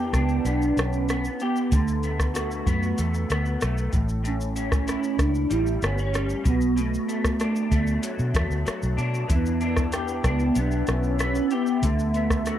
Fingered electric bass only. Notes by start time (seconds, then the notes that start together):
Already playing: E2
0.13 C#2
0.45 B1
0.77 B1
1.72 D2
2.67 F#2
2.99 E2
3.30 D2
3.63 B1
3.93 A1
5.19 C#2
5.51 A1
5.82 G1
6.45 B1
7.72 D2
8.19 B2
8.34 E2
8.50 D2
8.67 muted fingered electric bass stroke
8.83 B1
8.98 B2
9.30 E2
10.24 C#2
10.56 B1
10.88 B1
11.82 D2